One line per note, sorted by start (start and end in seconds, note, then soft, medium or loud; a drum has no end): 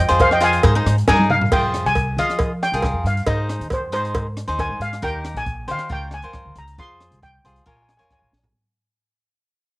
0.00 0.18 D#5 medium
0.00 0.18 G5 loud
0.08 0.57 F2 medium
0.08 0.28 F4 medium
0.08 0.29 G#4 medium
0.08 0.29 C5 medium
0.08 cross-stick medium
0.08 closed hi-hat medium
0.19 0.31 C5 medium
0.19 0.32 F5 medium
0.19 kick medium
0.19 closed hi-hat medium
0.19 cowbell medium
0.31 0.37 D#5 medium
0.31 0.37 G5 medium
0.31 cross-stick medium
0.40 0.61 F4 medium
0.40 0.61 G#4 medium
0.40 0.61 C5 medium
0.40 1.26 F5 medium
0.40 1.07 G#5 medium
0.40 closed hi-hat medium
0.53 closed hi-hat medium
0.63 0.83 G#2 loud
0.63 0.73 D#4 medium
0.63 0.73 G#4 medium
0.63 0.73 C5 medium
0.63 kick loud
0.63 closed hi-hat medium
0.63 cowbell medium
0.75 0.95 D#4 medium
0.75 0.95 G#4 medium
0.75 0.95 C5 medium
0.86 1.05 G#2 medium
0.86 cross-stick medium
0.86 closed hi-hat loud
0.98 closed hi-hat medium
1.08 1.46 G2 medium
1.08 1.34 D#4 medium
1.08 1.35 G#4 medium
1.08 1.35 A#4 medium
1.08 1.30 G#5 medium
1.08 kick medium
1.08 snare medium
1.08 cowbell medium
1.20 high tom medium
1.30 1.52 F5 medium
1.30 mid tom medium
1.42 floor tom medium
1.52 1.80 F2 medium
1.52 1.91 F4 medium
1.52 1.92 G#4 medium
1.52 1.92 C5 medium
1.52 1.86 G5 medium
1.52 kick loud
1.52 crash medium
1.52 cowbell medium
1.74 cross-stick medium
1.74 closed hi-hat medium
1.85 2.18 C2 medium
1.85 2.19 G#5 medium
1.85 closed hi-hat soft
1.95 kick medium
1.95 closed hi-hat medium
1.95 cowbell medium
2.17 2.65 F3 medium
2.17 2.51 F4 medium
2.17 2.51 G#4 medium
2.17 2.51 D#5 medium
2.17 2.63 F5 medium
2.17 closed hi-hat medium
2.30 cross-stick medium
2.30 closed hi-hat medium
2.39 kick loud
2.39 closed hi-hat medium
2.39 cowbell medium
2.63 3.03 G5 medium
2.63 cross-stick medium
2.63 closed hi-hat medium
2.72 2.91 C2 medium
2.72 3.05 F4 medium
2.72 3.05 G#4 medium
2.72 3.05 A#4 medium
2.72 closed hi-hat medium
2.82 kick medium
2.82 cross-stick medium
2.82 closed hi-hat medium
2.82 cowbell medium
2.93 3.03 F2 medium
3.04 3.23 G2 medium
3.04 3.28 F5 medium
3.04 closed hi-hat medium
3.17 closed hi-hat medium
3.26 3.56 G#2 medium
3.26 3.66 D#4 medium
3.26 3.66 G#4 medium
3.26 3.67 C5 medium
3.26 3.72 D#5 medium
3.26 kick medium
3.26 closed hi-hat medium
3.26 cowbell medium
3.49 cross-stick medium
3.49 closed hi-hat medium
3.60 3.92 D#2 medium
3.60 closed hi-hat medium
3.70 3.93 C5 medium
3.70 kick medium
3.70 closed hi-hat medium
3.70 cowbell medium
3.92 4.40 G#2 medium
3.92 4.26 D#4 medium
3.92 4.26 G#4 medium
3.92 4.26 C5 medium
3.92 4.55 C5 medium
3.92 closed hi-hat medium
4.05 closed hi-hat medium
4.15 kick loud
4.15 closed hi-hat medium
4.15 cowbell medium
4.37 cross-stick medium
4.37 closed hi-hat medium
4.48 4.67 D#2 medium
4.48 4.80 D#4 medium
4.48 4.80 G#4 medium
4.48 4.80 C5 medium
4.48 closed hi-hat medium
4.59 4.82 G#5 medium
4.59 kick medium
4.59 cross-stick medium
4.59 closed hi-hat medium
4.59 cowbell medium
4.69 4.79 G#2 medium
4.79 4.99 G#2 medium
4.79 5.01 F5 medium
4.79 closed hi-hat medium
4.93 cross-stick medium
4.93 closed hi-hat medium
5.02 5.31 D#2 medium
5.02 5.42 D#4 medium
5.02 5.42 G4 medium
5.02 5.42 A#4 medium
5.02 5.34 G5 medium
5.02 kick medium
5.02 closed hi-hat medium
5.25 cross-stick medium
5.25 closed hi-hat medium
5.34 5.69 A#1 medium
5.34 5.70 G#5 medium
5.34 closed hi-hat medium
5.46 kick medium
5.46 closed hi-hat medium
5.68 5.87 D#3 medium
5.68 5.89 D#4 medium
5.68 5.90 G4 medium
5.68 5.90 C5 medium
5.68 5.92 F5 medium
5.68 closed hi-hat medium
5.79 cross-stick medium
5.79 closed hi-hat medium
5.89 6.19 C#2 medium
5.89 6.17 F4 medium
5.89 6.17 A#4 medium
5.89 6.16 C#5 medium
5.89 6.14 G5 medium
5.89 kick medium
5.89 closed hi-hat medium
6.11 6.54 G#5 medium
6.11 cross-stick medium
6.11 closed hi-hat medium
6.22 6.42 F2 medium
6.22 6.56 F4 medium
6.22 6.56 A#4 medium
6.22 6.56 C5 medium
6.22 closed hi-hat soft
6.33 kick medium
6.33 cross-stick medium
6.33 closed hi-hat medium
6.45 6.55 C#2 medium
6.55 6.75 C#2 medium
6.55 6.68 A#5 medium
6.55 closed hi-hat medium
6.68 closed hi-hat soft
6.78 7.07 F2 medium
6.78 7.18 F4 medium
6.78 7.18 G#4 soft
6.78 7.18 C5 medium
6.78 7.24 C6 medium
6.78 kick medium
6.78 closed hi-hat soft
7.00 cross-stick medium
7.00 closed hi-hat medium
7.11 7.40 C2 medium
7.11 closed hi-hat soft
7.23 7.68 G5 medium
7.23 kick medium
7.23 closed hi-hat medium
7.44 7.63 C2 medium
7.44 7.65 F4 medium
7.44 7.66 G#4 medium
7.44 7.66 C5 medium
7.44 closed hi-hat medium
7.56 closed hi-hat soft
7.66 7.95 A#1 medium
7.66 7.92 F4 medium
7.66 7.93 A#4 medium
7.66 7.93 C#5 medium
7.66 7.74 G#5 medium
7.66 kick medium
7.66 closed hi-hat soft
7.77 7.81 G#5 medium
7.82 7.88 G#5 medium
7.89 7.96 G#5 medium
7.89 cross-stick medium
7.89 closed hi-hat medium
7.97 8.19 F2 medium
7.97 8.32 F4 medium
7.97 8.32 A#4 soft
7.97 8.32 C#5 medium
7.97 8.03 G#5 medium
7.97 closed hi-hat medium
8.04 8.11 G#5 medium
8.10 8.18 G#5 medium
8.10 kick medium
8.10 cross-stick medium
8.10 closed hi-hat medium
8.19 8.31 A#1 medium
8.19 8.26 G#5 medium
8.32 8.51 A#1 medium
8.32 snare soft
8.44 floor tom medium